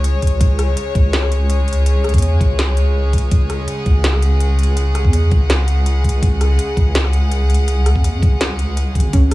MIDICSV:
0, 0, Header, 1, 5, 480
1, 0, Start_track
1, 0, Tempo, 363636
1, 535, Time_signature, 4, 2, 24, 8
1, 12331, End_track
2, 0, Start_track
2, 0, Title_t, "String section"
2, 0, Program_c, 0, 48
2, 0, Note_on_c, 0, 49, 90
2, 0, Note_on_c, 0, 56, 78
2, 0, Note_on_c, 0, 68, 78
2, 0, Note_on_c, 0, 73, 96
2, 4888, Note_on_c, 0, 78, 96
2, 4918, Note_off_c, 0, 73, 0
2, 12331, Note_off_c, 0, 49, 0
2, 12331, Note_off_c, 0, 56, 0
2, 12331, Note_off_c, 0, 68, 0
2, 12331, Note_off_c, 0, 78, 0
2, 12331, End_track
3, 0, Start_track
3, 0, Title_t, "Synth pluck"
3, 0, Program_c, 1, 84
3, 12056, Note_on_c, 1, 61, 85
3, 12197, Note_off_c, 1, 61, 0
3, 12331, End_track
4, 0, Start_track
4, 0, Title_t, "Wobble bass"
4, 0, Program_c, 2, 39
4, 0, Note_on_c, 2, 37, 93
4, 522, Note_off_c, 2, 37, 0
4, 538, Note_on_c, 2, 37, 101
4, 1002, Note_off_c, 2, 37, 0
4, 1257, Note_on_c, 2, 37, 91
4, 2805, Note_off_c, 2, 37, 0
4, 2822, Note_on_c, 2, 40, 98
4, 3161, Note_off_c, 2, 40, 0
4, 3176, Note_on_c, 2, 37, 93
4, 4361, Note_off_c, 2, 37, 0
4, 4375, Note_on_c, 2, 37, 101
4, 4840, Note_off_c, 2, 37, 0
4, 5097, Note_on_c, 2, 37, 92
4, 6645, Note_off_c, 2, 37, 0
4, 6661, Note_on_c, 2, 40, 98
4, 7001, Note_off_c, 2, 40, 0
4, 7016, Note_on_c, 2, 37, 94
4, 8201, Note_off_c, 2, 37, 0
4, 8216, Note_on_c, 2, 37, 103
4, 8681, Note_off_c, 2, 37, 0
4, 8935, Note_on_c, 2, 37, 95
4, 10484, Note_off_c, 2, 37, 0
4, 10502, Note_on_c, 2, 40, 96
4, 10841, Note_off_c, 2, 40, 0
4, 10857, Note_on_c, 2, 37, 89
4, 11817, Note_on_c, 2, 32, 101
4, 11836, Note_off_c, 2, 37, 0
4, 12037, Note_off_c, 2, 32, 0
4, 12059, Note_on_c, 2, 37, 101
4, 12331, Note_off_c, 2, 37, 0
4, 12331, End_track
5, 0, Start_track
5, 0, Title_t, "Drums"
5, 55, Note_on_c, 9, 42, 80
5, 187, Note_off_c, 9, 42, 0
5, 295, Note_on_c, 9, 42, 53
5, 297, Note_on_c, 9, 36, 63
5, 359, Note_off_c, 9, 42, 0
5, 359, Note_on_c, 9, 42, 68
5, 429, Note_off_c, 9, 36, 0
5, 491, Note_off_c, 9, 42, 0
5, 536, Note_on_c, 9, 42, 82
5, 537, Note_on_c, 9, 36, 123
5, 668, Note_off_c, 9, 42, 0
5, 669, Note_off_c, 9, 36, 0
5, 776, Note_on_c, 9, 37, 53
5, 776, Note_on_c, 9, 42, 67
5, 908, Note_off_c, 9, 37, 0
5, 908, Note_off_c, 9, 42, 0
5, 1015, Note_on_c, 9, 42, 85
5, 1147, Note_off_c, 9, 42, 0
5, 1256, Note_on_c, 9, 42, 37
5, 1257, Note_on_c, 9, 36, 117
5, 1388, Note_off_c, 9, 42, 0
5, 1389, Note_off_c, 9, 36, 0
5, 1496, Note_on_c, 9, 38, 127
5, 1496, Note_on_c, 9, 42, 79
5, 1623, Note_on_c, 9, 37, 61
5, 1628, Note_off_c, 9, 38, 0
5, 1628, Note_off_c, 9, 42, 0
5, 1738, Note_on_c, 9, 42, 68
5, 1755, Note_off_c, 9, 37, 0
5, 1870, Note_off_c, 9, 42, 0
5, 1975, Note_on_c, 9, 42, 81
5, 2107, Note_off_c, 9, 42, 0
5, 2215, Note_on_c, 9, 42, 50
5, 2279, Note_off_c, 9, 42, 0
5, 2279, Note_on_c, 9, 42, 65
5, 2411, Note_off_c, 9, 42, 0
5, 2457, Note_on_c, 9, 42, 77
5, 2589, Note_off_c, 9, 42, 0
5, 2697, Note_on_c, 9, 37, 51
5, 2697, Note_on_c, 9, 42, 29
5, 2758, Note_off_c, 9, 42, 0
5, 2758, Note_on_c, 9, 42, 38
5, 2822, Note_on_c, 9, 36, 64
5, 2823, Note_off_c, 9, 42, 0
5, 2823, Note_on_c, 9, 42, 46
5, 2829, Note_off_c, 9, 37, 0
5, 2881, Note_off_c, 9, 42, 0
5, 2881, Note_on_c, 9, 42, 56
5, 2935, Note_off_c, 9, 42, 0
5, 2935, Note_on_c, 9, 42, 80
5, 2954, Note_off_c, 9, 36, 0
5, 3067, Note_off_c, 9, 42, 0
5, 3176, Note_on_c, 9, 36, 111
5, 3179, Note_on_c, 9, 42, 35
5, 3308, Note_off_c, 9, 36, 0
5, 3311, Note_off_c, 9, 42, 0
5, 3417, Note_on_c, 9, 38, 122
5, 3417, Note_on_c, 9, 42, 78
5, 3549, Note_off_c, 9, 38, 0
5, 3549, Note_off_c, 9, 42, 0
5, 3656, Note_on_c, 9, 42, 67
5, 3788, Note_off_c, 9, 42, 0
5, 4135, Note_on_c, 9, 42, 49
5, 4136, Note_on_c, 9, 36, 66
5, 4198, Note_off_c, 9, 42, 0
5, 4198, Note_on_c, 9, 42, 63
5, 4268, Note_off_c, 9, 36, 0
5, 4330, Note_off_c, 9, 42, 0
5, 4374, Note_on_c, 9, 42, 75
5, 4376, Note_on_c, 9, 36, 116
5, 4506, Note_off_c, 9, 42, 0
5, 4508, Note_off_c, 9, 36, 0
5, 4616, Note_on_c, 9, 37, 49
5, 4616, Note_on_c, 9, 42, 62
5, 4748, Note_off_c, 9, 37, 0
5, 4748, Note_off_c, 9, 42, 0
5, 4854, Note_on_c, 9, 42, 78
5, 4986, Note_off_c, 9, 42, 0
5, 5095, Note_on_c, 9, 42, 35
5, 5096, Note_on_c, 9, 36, 108
5, 5227, Note_off_c, 9, 42, 0
5, 5228, Note_off_c, 9, 36, 0
5, 5333, Note_on_c, 9, 38, 116
5, 5333, Note_on_c, 9, 42, 77
5, 5459, Note_on_c, 9, 37, 58
5, 5465, Note_off_c, 9, 38, 0
5, 5465, Note_off_c, 9, 42, 0
5, 5576, Note_on_c, 9, 42, 66
5, 5591, Note_off_c, 9, 37, 0
5, 5708, Note_off_c, 9, 42, 0
5, 5814, Note_on_c, 9, 42, 75
5, 5946, Note_off_c, 9, 42, 0
5, 6055, Note_on_c, 9, 42, 47
5, 6116, Note_off_c, 9, 42, 0
5, 6116, Note_on_c, 9, 42, 61
5, 6248, Note_off_c, 9, 42, 0
5, 6293, Note_on_c, 9, 42, 76
5, 6425, Note_off_c, 9, 42, 0
5, 6534, Note_on_c, 9, 37, 52
5, 6534, Note_on_c, 9, 42, 64
5, 6661, Note_on_c, 9, 36, 61
5, 6666, Note_off_c, 9, 37, 0
5, 6666, Note_off_c, 9, 42, 0
5, 6775, Note_on_c, 9, 42, 77
5, 6793, Note_off_c, 9, 36, 0
5, 6907, Note_off_c, 9, 42, 0
5, 7015, Note_on_c, 9, 42, 35
5, 7016, Note_on_c, 9, 36, 105
5, 7147, Note_off_c, 9, 42, 0
5, 7148, Note_off_c, 9, 36, 0
5, 7257, Note_on_c, 9, 38, 116
5, 7257, Note_on_c, 9, 42, 76
5, 7389, Note_off_c, 9, 38, 0
5, 7389, Note_off_c, 9, 42, 0
5, 7495, Note_on_c, 9, 42, 66
5, 7627, Note_off_c, 9, 42, 0
5, 7737, Note_on_c, 9, 42, 75
5, 7869, Note_off_c, 9, 42, 0
5, 7976, Note_on_c, 9, 36, 60
5, 7978, Note_on_c, 9, 42, 45
5, 8039, Note_off_c, 9, 42, 0
5, 8039, Note_on_c, 9, 42, 62
5, 8108, Note_off_c, 9, 36, 0
5, 8171, Note_off_c, 9, 42, 0
5, 8216, Note_on_c, 9, 36, 115
5, 8219, Note_on_c, 9, 42, 80
5, 8348, Note_off_c, 9, 36, 0
5, 8351, Note_off_c, 9, 42, 0
5, 8460, Note_on_c, 9, 37, 55
5, 8460, Note_on_c, 9, 42, 66
5, 8592, Note_off_c, 9, 37, 0
5, 8592, Note_off_c, 9, 42, 0
5, 8697, Note_on_c, 9, 42, 80
5, 8829, Note_off_c, 9, 42, 0
5, 8935, Note_on_c, 9, 36, 103
5, 8937, Note_on_c, 9, 42, 35
5, 9067, Note_off_c, 9, 36, 0
5, 9069, Note_off_c, 9, 42, 0
5, 9175, Note_on_c, 9, 38, 114
5, 9175, Note_on_c, 9, 42, 77
5, 9300, Note_on_c, 9, 37, 63
5, 9307, Note_off_c, 9, 38, 0
5, 9307, Note_off_c, 9, 42, 0
5, 9416, Note_on_c, 9, 42, 65
5, 9432, Note_off_c, 9, 37, 0
5, 9548, Note_off_c, 9, 42, 0
5, 9656, Note_on_c, 9, 42, 73
5, 9788, Note_off_c, 9, 42, 0
5, 9896, Note_on_c, 9, 42, 48
5, 9958, Note_off_c, 9, 42, 0
5, 9958, Note_on_c, 9, 42, 62
5, 10090, Note_off_c, 9, 42, 0
5, 10136, Note_on_c, 9, 42, 81
5, 10268, Note_off_c, 9, 42, 0
5, 10376, Note_on_c, 9, 37, 56
5, 10376, Note_on_c, 9, 42, 67
5, 10502, Note_on_c, 9, 36, 61
5, 10508, Note_off_c, 9, 37, 0
5, 10508, Note_off_c, 9, 42, 0
5, 10617, Note_on_c, 9, 42, 82
5, 10634, Note_off_c, 9, 36, 0
5, 10749, Note_off_c, 9, 42, 0
5, 10856, Note_on_c, 9, 36, 104
5, 10860, Note_on_c, 9, 42, 37
5, 10988, Note_off_c, 9, 36, 0
5, 10992, Note_off_c, 9, 42, 0
5, 11098, Note_on_c, 9, 38, 117
5, 11098, Note_on_c, 9, 42, 80
5, 11230, Note_off_c, 9, 38, 0
5, 11230, Note_off_c, 9, 42, 0
5, 11338, Note_on_c, 9, 42, 66
5, 11470, Note_off_c, 9, 42, 0
5, 11577, Note_on_c, 9, 42, 80
5, 11709, Note_off_c, 9, 42, 0
5, 11817, Note_on_c, 9, 36, 60
5, 11818, Note_on_c, 9, 42, 49
5, 11880, Note_off_c, 9, 42, 0
5, 11880, Note_on_c, 9, 42, 65
5, 11949, Note_off_c, 9, 36, 0
5, 12012, Note_off_c, 9, 42, 0
5, 12055, Note_on_c, 9, 42, 85
5, 12057, Note_on_c, 9, 36, 120
5, 12187, Note_off_c, 9, 42, 0
5, 12189, Note_off_c, 9, 36, 0
5, 12331, End_track
0, 0, End_of_file